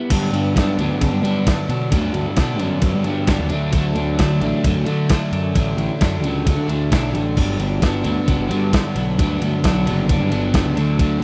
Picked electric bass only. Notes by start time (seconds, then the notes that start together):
0.10 G2
0.32 G2
0.56 G2
0.78 D2
1.01 C#3
1.12 G2
1.23 G3
1.69 B2
1.91 D2
2.14 D2
2.37 B2
2.59 F#2
2.82 F#2
2.94 G3
3.05 G2
3.39 D#2
3.50 D2
3.95 D2
4.19 D2
4.41 A1
4.64 F#2
4.75 D2
4.86 D3
5.32 F#2
5.55 A1
5.77 A1
6.01 F#2
6.23 C#2
6.46 C#2
6.57 D3
6.68 D2
6.91 B1
7.13 A1
7.37 G1
7.59 G1
7.82 G1
8.05 D2
8.28 C#2
8.39 G1
8.50 G2
8.96 B1
9.18 D2
9.42 D2
9.64 B1
9.86 F#1
10.09 F#1
10.20 G2
10.31 G1
10.64 C#2
10.76 D2
11.20 D2